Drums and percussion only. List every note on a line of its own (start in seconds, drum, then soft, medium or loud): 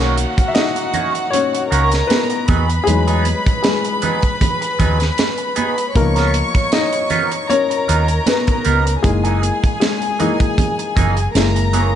0.17 closed hi-hat medium
0.17 muted conga soft
0.38 kick medium
0.38 closed hi-hat soft
0.55 snare loud
0.55 closed hi-hat medium
0.55 high conga medium
0.76 closed hi-hat soft
0.94 closed hi-hat medium
0.94 low conga medium
1.15 closed hi-hat soft
1.33 closed hi-hat medium
1.33 muted conga soft
1.55 closed hi-hat soft
1.72 closed hi-hat medium
1.92 snare soft
1.92 closed hi-hat soft
2.10 snare medium
2.10 closed hi-hat medium
2.10 high conga medium
2.30 closed hi-hat soft
2.48 kick medium
2.48 closed hi-hat medium
2.48 high conga medium
2.70 closed hi-hat soft
2.87 closed hi-hat medium
2.87 muted conga soft
3.08 closed hi-hat soft
3.25 closed hi-hat medium
3.25 muted conga soft
3.46 kick medium
3.46 closed hi-hat soft
3.64 snare loud
3.64 closed hi-hat medium
3.64 high conga medium
3.84 closed hi-hat soft
4.02 closed hi-hat medium
4.02 low conga medium
4.22 kick medium
4.22 closed hi-hat soft
4.41 kick medium
4.41 closed hi-hat medium
4.41 muted conga soft
4.41 low conga medium
4.62 closed hi-hat soft
4.80 kick medium
4.80 closed hi-hat medium
4.80 low conga medium
5.00 snare soft
5.00 closed hi-hat soft
5.18 snare medium
5.18 closed hi-hat medium
5.18 high conga medium
5.38 closed hi-hat soft
5.56 closed hi-hat medium
5.56 high conga medium
5.78 closed hi-hat soft
5.95 kick loud
5.95 closed hi-hat medium
5.95 muted conga soft
6.16 snare soft
6.16 closed hi-hat soft
6.34 closed hi-hat medium
6.34 muted conga soft
6.55 kick medium
6.55 closed hi-hat soft
6.72 snare loud
6.72 closed hi-hat medium
6.72 high conga medium
6.93 closed hi-hat soft
7.10 closed hi-hat medium
7.10 low conga medium
7.31 closed hi-hat soft
7.50 closed hi-hat medium
7.50 muted conga soft
7.71 closed hi-hat soft
7.89 closed hi-hat medium
8.08 closed hi-hat soft
8.26 snare medium
8.26 closed hi-hat medium
8.26 high conga medium
8.47 kick medium
8.47 closed hi-hat soft
8.65 closed hi-hat medium
8.65 high conga medium
8.87 closed hi-hat soft
9.04 kick loud
9.04 closed hi-hat medium
9.04 muted conga medium
9.25 closed hi-hat soft
9.43 closed hi-hat medium
9.43 muted conga soft
9.64 kick medium
9.64 closed hi-hat soft
9.81 snare loud
9.81 closed hi-hat medium
9.81 high conga medium
10.02 closed hi-hat soft
10.20 closed hi-hat medium
10.20 low conga medium
10.40 kick medium
10.40 closed hi-hat soft
10.58 kick medium
10.58 closed hi-hat medium
10.58 muted conga soft
10.58 low conga medium
10.79 closed hi-hat soft
10.97 kick medium
10.97 closed hi-hat medium
10.97 low conga medium
11.17 closed hi-hat soft
11.35 snare medium
11.35 closed hi-hat medium
11.35 high conga medium
11.56 closed hi-hat soft
11.73 closed hi-hat medium
11.73 high conga medium